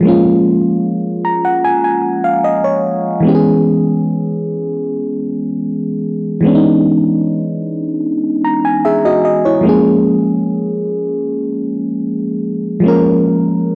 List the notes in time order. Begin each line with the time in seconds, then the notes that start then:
0.01 F3 G#3
0.05 A#3 C#4 F4
1.25 A#5
1.45 F#5
1.64 G#5
1.84 G#5
2.24 F5
2.44 D#5
2.64 C#5
3.20 E3 G#3 B3
3.27 C#4 G4
3.35 G#4
6.41 E3 G#3 B3
6.46 C#4 D4
6.55 D#4
8.45 A#5
8.65 G#5
8.85 G#4 E5
9.05 F#4 D#5
9.25 D#5
9.45 E4 C#5
9.61 F3 G#3 A#3
9.67 C#4 G#4
12.80 F3 G#3 A#3
12.86 C#4 A#4